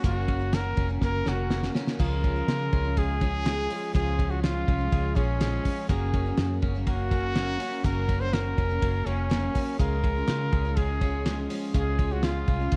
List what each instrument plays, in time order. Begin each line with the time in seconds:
Already playing: synth keys C#4 F#4 A#4, clean electric guitar C#4
0.04 fingered electric bass F#1, steel-string acoustic guitar F#2 C#3 F#3 A#3 C#4 F#4, synth keys C#4 F#4 A#4, trumpet F#4, kick, hi-hat pedal, ride
0.28 clean electric guitar C#4, synth keys C#4 F#4 A#4, kick, ride
0.40 steel-string acoustic guitar F#3 A#3 C#4 F#4
0.53 synth keys C#4 F#4 A#4, clean electric guitar F#4, trumpet A#4, snare, ride
0.77 fingered electric bass F1, clean electric guitar C#4, synth keys C#4 F#4 A#4, kick, ride
0.89 steel-string acoustic guitar F#3 A#3 C#4 F#4
1.01 fingered electric bass F#1, clean electric guitar A#3, synth keys C#4 F#4 A#4, trumpet A#4, kick, snare
1.25 fingered electric bass F1, steel-string acoustic guitar F#3 A#3 C#4 F#4, synth keys C#4 F#4 A#4, trumpet F#4, snare
1.50 steel-string acoustic guitar F#3 A#3 C#4 F#4, synth keys C#4 F#4 A#4, snare
1.63 snare
1.74 steel-string acoustic guitar F#3 A#3 C#4 F#4, synth keys C#4 F#4 A#4, snare
1.87 snare
1.99 fingered electric bass C#2, steel-string acoustic guitar C#3 F3 G#3 C#4 F4, synth keys C#4 F4 G#4, trumpet A#4, kick, crash
2.24 clean electric guitar C#4, synth keys C#4 F4 G#4, kick, ride
2.36 steel-string acoustic guitar G#3 C#4 F4
2.48 fingered electric bass C#3, synth keys C#4 F4 G#4, clean electric guitar F4, snare, ride
2.73 fingered electric bass C#2, clean electric guitar C#4, synth keys C#4 F4 G#4, kick, ride
2.85 steel-string acoustic guitar G#3 C#4 F4
2.97 clean electric guitar G#3, synth keys C#4 F4 G#4, trumpet G#4, kick, ride
3.21 steel-string acoustic guitar F3 G#3 C#4 F4, synth keys C#4 F4 G#4, kick, ride
3.45 steel-string acoustic guitar F3 G#3 C#4 F4, synth keys C#4 F4 G#4, snare, ride
3.70 steel-string acoustic guitar F3 G#3 C#4 F4, synth keys C#4 F4 G#4, open hi-hat, ride
3.94 fingered electric bass C#2, steel-string acoustic guitar C#3 F3 G#3 C#4 F4, synth keys C#4 F4 G#4, trumpet G#4, kick, hi-hat pedal, ride
4.19 clean electric guitar C#4, synth keys C#4 F4 G#4, kick, ride
4.30 steel-string acoustic guitar G#3 C#4 F4, trumpet F#4
4.43 synth keys C#4 F4 G#4, trumpet F4, clean electric guitar F4, snare, ride
4.67 fingered electric bass C2, clean electric guitar C#4, synth keys C#4 F4 G#4, kick, ride
4.79 steel-string acoustic guitar G#3 C#4 F4
4.92 fingered electric bass C#2, clean electric guitar G#3, synth keys C#4 F4 G#4, kick, ride
5.15 fingered electric bass A#1, steel-string acoustic guitar F3 G#3 C#4 F4, trumpet C#4, synth keys C#4 F4 G#4, kick, ride
5.40 steel-string acoustic guitar F3 G#3 C#4 F4, synth keys C#4 F4 G#4, snare, ride
5.65 steel-string acoustic guitar F3 G#3 C#4 F4, synth keys C#4 F4 G#4, kick, open hi-hat, ride
5.89 fingered electric bass F#1, steel-string acoustic guitar F#2 C#3 F#3 A#3 C#4 F#4, synth keys C#4 F#4 A#4, trumpet G#4, kick, hi-hat pedal, ride
6.13 synth keys C#4 F#4 A#4, clean electric guitar C#4, kick, ride
6.26 steel-string acoustic guitar F#3 A#3 C#4 F#4
6.37 fingered electric bass F#2, synth keys C#4 F#4 A#4, clean electric guitar F#4, snare, ride
6.62 fingered electric bass F#1, clean electric guitar C#4, synth keys C#4 F#4 A#4, kick, ride
6.74 steel-string acoustic guitar F#3 A#3 C#4 F#4
6.87 clean electric guitar A#3, synth keys C#4 F#4 A#4, trumpet F#4, kick, ride
7.11 steel-string acoustic guitar F#3 A#3 C#4 F#4, synth keys C#4 F#4 A#4, kick, ride
7.35 steel-string acoustic guitar F#3 A#3 C#4 F#4, synth keys C#4 F#4 A#4, snare, ride
7.59 steel-string acoustic guitar F#3 A#3 C#4 F#4, synth keys C#4 F#4 A#4, open hi-hat, ride
7.84 fingered electric bass F#1, steel-string acoustic guitar F#2 C#3 F#3 A#3 C#4 F#4, synth keys C#4 F#4 A#4, trumpet A#4, kick, hi-hat pedal, ride
8.08 clean electric guitar C#4, synth keys C#4 F#4 A#4, kick, ride
8.21 steel-string acoustic guitar F#3 A#3 C#4 F#4, trumpet C5
8.33 synth keys C#4 F#4 A#4, clean electric guitar F#4, trumpet A#4, snare, ride
8.58 fingered electric bass F1, clean electric guitar C#4, synth keys C#4 F#4 A#4, kick, ride
8.69 steel-string acoustic guitar F#3 A#3 C#4 F#4
8.82 fingered electric bass F#1, clean electric guitar A#3, synth keys C#4 F#4 A#4, kick, ride
9.06 fingered electric bass F1, steel-string acoustic guitar F#3 A#3 C#4 F#4, synth keys C#4 F#4 A#4, trumpet C#4, ride
9.30 steel-string acoustic guitar F#3 A#3 C#4 F#4, synth keys C#4 F#4 A#4, snare, ride
9.54 steel-string acoustic guitar F#3 A#3 C#4 F#4, synth keys C#4 F#4 A#4, kick, open hi-hat, ride
9.79 fingered electric bass C#2, steel-string acoustic guitar C#3 F3 G#3 C#4 F4, synth keys C#4 F4 G#4, trumpet A#4, kick, hi-hat pedal, ride
10.03 synth keys C#4 F4 G#4, clean electric guitar C#4, kick, ride
10.16 steel-string acoustic guitar G#3 C#4 F4
10.28 fingered electric bass C#3, synth keys C#4 F4 G#4, clean electric guitar F4, snare, ride
10.52 fingered electric bass C#2, synth keys C#4 F4 G#4, clean electric guitar C#4, kick, ride
10.65 steel-string acoustic guitar G#3 C#4 F4
10.77 clean electric guitar G#3, synth keys C#4 F4 G#4, trumpet G#4, kick, ride
11.01 steel-string acoustic guitar F3 G#3 C#4 F4, synth keys C#4 F4 G#4, kick, ride
11.26 steel-string acoustic guitar F3 G#3 C#4 F4, synth keys C#4 F4 G#4, snare, ride
11.50 steel-string acoustic guitar F3 G#3 C#4 F4, synth keys C#4 F4 G#4, open hi-hat, ride
11.74 fingered electric bass C#2, steel-string acoustic guitar C#3 F3 G#3 C#4 F4, synth keys C#4 F4 G#4, trumpet G#4, kick, hi-hat pedal, ride
11.99 clean electric guitar C#4, synth keys C#4 F4 G#4, kick, ride
12.10 steel-string acoustic guitar G#3 C#4 F4, trumpet F#4
12.23 synth keys C#4 F4 G#4, clean electric guitar F4, trumpet F4, snare, ride
12.48 fingered electric bass C2, synth keys C#4 F4 G#4, clean electric guitar C#4, kick, ride
12.60 steel-string acoustic guitar G#3 C#4 F4
12.72 fingered electric bass C#2, clean electric guitar G#3, synth keys C#4 F4 G#4, kick, ride